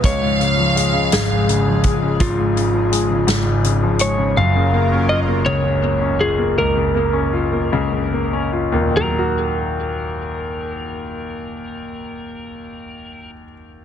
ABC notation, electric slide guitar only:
X:1
M:6/8
L:1/8
Q:3/8=53
K:Ebm
V:1 name="Electric slide guitar"
d3 A3 | F4- F d | f2 e d2 A | B4- B z |
B6- | B6 |]